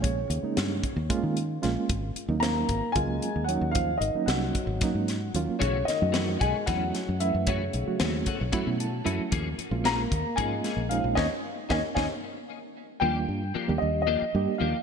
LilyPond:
<<
  \new Staff \with { instrumentName = "Grand piano" } { \time 7/8 \key aes \major \tempo 4 = 113 des''2 r4. | r4 bes''4 aes''4 ges''8 | f''8 ees''8 ges''2 r8 | cis''8 ees''4 aes''8 fis''4 e''8 |
cis''2 r4. | r4 bes''4 aes''4 f''8 | <des'' ees'' aes''>8 r8 <des'' ees'' aes''>8 <des'' ees'' aes''>8 r4. | \key ees \major g''4. ees''8 ees''4 f''8 | }
  \new Staff \with { instrumentName = "Clean electric guitar" } { \time 7/8 \key aes \major r2. r8 | r2. r8 | r2. r8 | <e a cis' fis'>8 r8 <e a cis' fis'>8 <a cis' fis'>8 <e a cis' fis'>8 r4 |
<e a cis' fis'>8 r8 <e a cis' fis'>8 <a cis' fis'>8 <e a cis' fis'>8 r8 <e a cis' fis'>8 | <f bes des' aes'>8 r8 <f bes des' aes'>8 r8 <f bes des' aes'>8 <bes des' aes'>8 r8 | <bes des' ees'>8 r8 <bes des' ees'>8 <bes des' ees'>8 r4. | \key ees \major <f bes d' g'>8 r8 <f bes d' g'>8 r8 <f bes d' g'>8 r8 <f bes d' g'>8 | }
  \new Staff \with { instrumentName = "Reed electric piano" } { \time 7/8 \key aes \major r2. r8 | r2. r8 | r2. r8 | r2. r8 |
r2 r8 a''4 | r2. r8 | <bes des' ees'>8 r8 <bes des' ees'>8 <bes des' ees'>8 r4. | \key ees \major r2. r8 | }
  \new Staff \with { instrumentName = "Reed electric piano" } { \time 7/8 \key aes \major <aes bes des' aes'>16 r8 <aes bes des' ees'>8. r8 <aes bes des' f'>8 r8 <aes bes des' f'>8 | r8. <ges bes des' ees'>8. r8 <ges bes des' f'>8 r8 <ges bes des' ees'>8~ | <ges bes des' ees'>16 r8 <ges bes des' ees'>8. r8 <ges bes des' ees'>8 r8 <ges bes des' f'>8 | r8. <fis a cis' fis'>8. r8 <fis a cis' e'>8 r8 <fis a cis' e'>8~ |
<fis a cis' e'>16 r8 <fis a cis' fis'>8. r8 <fis a cis' e'>8 r8 <fis a cis' e'>8 | r8. <aes bes des' f'>8. r8 <aes bes des' f'>8 r8 <aes bes des' ees'>8 | r2. r8 | \key ees \major <g bes d' f'>8. r8 <g bes d' g'>8. r8 <g bes d' g'>8 r8 | }
  \new Staff \with { instrumentName = "Trombone" } { \clef bass \time 7/8 \key aes \major des2 r4. | r4 bes4 aes4 ges8 | f8 ees8 ges2 r8 | cis8 ees4 aes8 fis4 e8 |
cis2 r4. | r4 bes4 aes4 f8 | ees8 r8 ees8 ees8 r4. | \key ees \major r2. r8 | }
  \new Staff \with { instrumentName = "Fingered electric bass" } { \clef bass \time 7/8 \key aes \major bes,,8 ees,16 r16 g,8 r16 ees,16 r16 ees8. bes,,16 r16 | aes,,8 r16 ees,8. aes,,16 r16 des,8 r16 ees,8 ees,16~ | ees,8 aes,,16 r16 c,8 r16 aes,,16 r16 aes,8. ees,16 r16 | b,,8 r16 fis,8. b,,16 r16 e,8 r16 fis,8 fis,16~ |
fis,8 b,,16 r16 ees,8 r16 b,,16 r16 b,8. fis,16 r16 | ees,8 r16 bes,,8. ees,16 r16 aes,8 r16 bes,,8 bes,,16 | ees,16 r8. ees,16 r16 ees,16 r4. r16 | \key ees \major ees,8 g,8 r16 ees,16 ees,8. r16 g,16 r16 ees,16 r16 | }
  \new DrumStaff \with { instrumentName = "Drums" } \drummode { \time 7/8 <hh bd>8 hh8 <hh sn>8 <hh bd>8 <hh bd>8 hh8 <hh sn>8 | <hh bd>8 hh8 <hh sn>8 <hh bd>8 <hh bd>8 hh8 hh8 | <hh bd>8 hh8 <hh sn>8 <hh bd>8 <hh bd sn>8 <hh sn>8 hh8 | <hh bd>8 <hh sn>8 <hh sn>8 <hh bd>8 <hh bd sn>8 <hh sn>8 hh8 |
<hh bd>8 hh8 <hh sn>8 <hh bd>8 <hh bd>8 hh8 hh8 | <hh bd>8 hh8 <hh sn>8 <hh bd>8 <hh bd>8 <hh sn>8 hh8 | <bd sn>4 <bd sn>8 <bd sn>8 r4. | r4 r4 r4. | }
>>